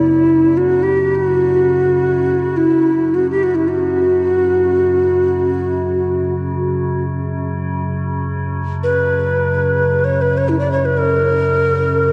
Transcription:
0, 0, Header, 1, 3, 480
1, 0, Start_track
1, 0, Key_signature, 6, "major"
1, 0, Tempo, 500000
1, 11640, End_track
2, 0, Start_track
2, 0, Title_t, "Native American-style wooden flute"
2, 0, Program_c, 0, 77
2, 0, Note_on_c, 0, 64, 76
2, 550, Note_on_c, 0, 66, 71
2, 564, Note_off_c, 0, 64, 0
2, 796, Note_on_c, 0, 67, 69
2, 811, Note_off_c, 0, 66, 0
2, 1107, Note_on_c, 0, 66, 83
2, 1121, Note_off_c, 0, 67, 0
2, 2465, Note_on_c, 0, 64, 76
2, 2479, Note_off_c, 0, 66, 0
2, 3018, Note_on_c, 0, 66, 68
2, 3032, Note_off_c, 0, 64, 0
2, 3169, Note_off_c, 0, 66, 0
2, 3175, Note_on_c, 0, 67, 80
2, 3295, Note_on_c, 0, 66, 77
2, 3310, Note_off_c, 0, 67, 0
2, 3406, Note_on_c, 0, 64, 69
2, 3420, Note_off_c, 0, 66, 0
2, 3535, Note_on_c, 0, 66, 78
2, 3549, Note_off_c, 0, 64, 0
2, 6744, Note_off_c, 0, 66, 0
2, 8480, Note_on_c, 0, 71, 80
2, 9644, Note_on_c, 0, 73, 82
2, 9658, Note_off_c, 0, 71, 0
2, 9806, Note_on_c, 0, 71, 81
2, 9820, Note_off_c, 0, 73, 0
2, 9961, Note_on_c, 0, 73, 76
2, 9975, Note_off_c, 0, 71, 0
2, 10067, Note_on_c, 0, 64, 78
2, 10082, Note_off_c, 0, 73, 0
2, 10163, Note_off_c, 0, 64, 0
2, 10169, Note_on_c, 0, 74, 85
2, 10278, Note_off_c, 0, 74, 0
2, 10291, Note_on_c, 0, 73, 77
2, 10420, Note_on_c, 0, 71, 85
2, 10434, Note_off_c, 0, 73, 0
2, 10539, Note_on_c, 0, 70, 95
2, 10553, Note_off_c, 0, 71, 0
2, 11640, Note_off_c, 0, 70, 0
2, 11640, End_track
3, 0, Start_track
3, 0, Title_t, "Synth drone"
3, 0, Program_c, 1, 95
3, 0, Note_on_c, 1, 42, 68
3, 0, Note_on_c, 1, 49, 67
3, 1994, Note_off_c, 1, 42, 0
3, 1994, Note_off_c, 1, 49, 0
3, 2005, Note_on_c, 1, 42, 68
3, 2005, Note_on_c, 1, 49, 64
3, 11640, Note_off_c, 1, 42, 0
3, 11640, Note_off_c, 1, 49, 0
3, 11640, End_track
0, 0, End_of_file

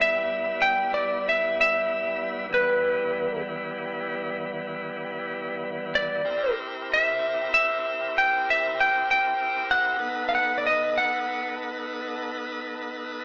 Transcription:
0, 0, Header, 1, 3, 480
1, 0, Start_track
1, 0, Key_signature, 1, "minor"
1, 0, Tempo, 626370
1, 1914, Time_signature, 12, 3, 24, 8
1, 10151, End_track
2, 0, Start_track
2, 0, Title_t, "Lead electric guitar"
2, 0, Program_c, 0, 29
2, 11, Note_on_c, 0, 76, 85
2, 473, Note_on_c, 0, 79, 89
2, 497, Note_off_c, 0, 76, 0
2, 697, Note_off_c, 0, 79, 0
2, 721, Note_on_c, 0, 74, 78
2, 964, Note_off_c, 0, 74, 0
2, 988, Note_on_c, 0, 76, 75
2, 1218, Note_off_c, 0, 76, 0
2, 1232, Note_on_c, 0, 76, 82
2, 1946, Note_on_c, 0, 71, 61
2, 1954, Note_off_c, 0, 76, 0
2, 2619, Note_off_c, 0, 71, 0
2, 4562, Note_on_c, 0, 74, 84
2, 5007, Note_off_c, 0, 74, 0
2, 5314, Note_on_c, 0, 76, 77
2, 5768, Note_off_c, 0, 76, 0
2, 5778, Note_on_c, 0, 76, 72
2, 6259, Note_off_c, 0, 76, 0
2, 6269, Note_on_c, 0, 79, 81
2, 6497, Note_off_c, 0, 79, 0
2, 6517, Note_on_c, 0, 76, 76
2, 6741, Note_off_c, 0, 76, 0
2, 6747, Note_on_c, 0, 79, 75
2, 6972, Note_off_c, 0, 79, 0
2, 6981, Note_on_c, 0, 79, 86
2, 7438, Note_off_c, 0, 79, 0
2, 7441, Note_on_c, 0, 78, 87
2, 7875, Note_off_c, 0, 78, 0
2, 7883, Note_on_c, 0, 77, 56
2, 7924, Note_off_c, 0, 77, 0
2, 7930, Note_on_c, 0, 78, 71
2, 8094, Note_off_c, 0, 78, 0
2, 8106, Note_on_c, 0, 74, 52
2, 8155, Note_off_c, 0, 74, 0
2, 8173, Note_on_c, 0, 75, 65
2, 8409, Note_off_c, 0, 75, 0
2, 8411, Note_on_c, 0, 78, 68
2, 9809, Note_off_c, 0, 78, 0
2, 10151, End_track
3, 0, Start_track
3, 0, Title_t, "Tonewheel organ"
3, 0, Program_c, 1, 16
3, 0, Note_on_c, 1, 55, 59
3, 0, Note_on_c, 1, 59, 58
3, 0, Note_on_c, 1, 64, 57
3, 1886, Note_off_c, 1, 55, 0
3, 1890, Note_off_c, 1, 64, 0
3, 1893, Note_off_c, 1, 59, 0
3, 1909, Note_on_c, 1, 55, 54
3, 1909, Note_on_c, 1, 59, 56
3, 1917, Note_on_c, 1, 52, 53
3, 4762, Note_off_c, 1, 55, 0
3, 4763, Note_off_c, 1, 59, 0
3, 4766, Note_off_c, 1, 52, 0
3, 4784, Note_on_c, 1, 64, 54
3, 4787, Note_on_c, 1, 60, 56
3, 4787, Note_on_c, 1, 67, 56
3, 4792, Note_on_c, 1, 70, 55
3, 7638, Note_off_c, 1, 64, 0
3, 7640, Note_off_c, 1, 60, 0
3, 7640, Note_off_c, 1, 67, 0
3, 7642, Note_off_c, 1, 70, 0
3, 7653, Note_on_c, 1, 71, 56
3, 7654, Note_on_c, 1, 63, 57
3, 7656, Note_on_c, 1, 69, 56
3, 7663, Note_on_c, 1, 59, 56
3, 10151, Note_off_c, 1, 59, 0
3, 10151, Note_off_c, 1, 63, 0
3, 10151, Note_off_c, 1, 69, 0
3, 10151, Note_off_c, 1, 71, 0
3, 10151, End_track
0, 0, End_of_file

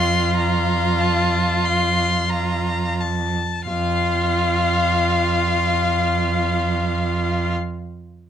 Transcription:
0, 0, Header, 1, 5, 480
1, 0, Start_track
1, 0, Key_signature, -1, "major"
1, 0, Tempo, 500000
1, 7966, End_track
2, 0, Start_track
2, 0, Title_t, "Violin"
2, 0, Program_c, 0, 40
2, 0, Note_on_c, 0, 84, 51
2, 318, Note_off_c, 0, 84, 0
2, 362, Note_on_c, 0, 82, 42
2, 961, Note_on_c, 0, 81, 43
2, 975, Note_off_c, 0, 82, 0
2, 1581, Note_on_c, 0, 84, 42
2, 1595, Note_off_c, 0, 81, 0
2, 2207, Note_on_c, 0, 82, 41
2, 2222, Note_off_c, 0, 84, 0
2, 2887, Note_on_c, 0, 81, 37
2, 2901, Note_off_c, 0, 82, 0
2, 3529, Note_off_c, 0, 81, 0
2, 3534, Note_on_c, 0, 77, 46
2, 7242, Note_off_c, 0, 77, 0
2, 7966, End_track
3, 0, Start_track
3, 0, Title_t, "Violin"
3, 0, Program_c, 1, 40
3, 0, Note_on_c, 1, 77, 43
3, 2883, Note_off_c, 1, 77, 0
3, 3529, Note_on_c, 1, 77, 46
3, 7237, Note_off_c, 1, 77, 0
3, 7966, End_track
4, 0, Start_track
4, 0, Title_t, "Viola"
4, 0, Program_c, 2, 41
4, 0, Note_on_c, 2, 65, 45
4, 2873, Note_off_c, 2, 65, 0
4, 3535, Note_on_c, 2, 65, 46
4, 7243, Note_off_c, 2, 65, 0
4, 7966, End_track
5, 0, Start_track
5, 0, Title_t, "Cello"
5, 0, Program_c, 3, 42
5, 0, Note_on_c, 3, 41, 45
5, 3204, Note_off_c, 3, 41, 0
5, 3536, Note_on_c, 3, 41, 49
5, 7244, Note_off_c, 3, 41, 0
5, 7966, End_track
0, 0, End_of_file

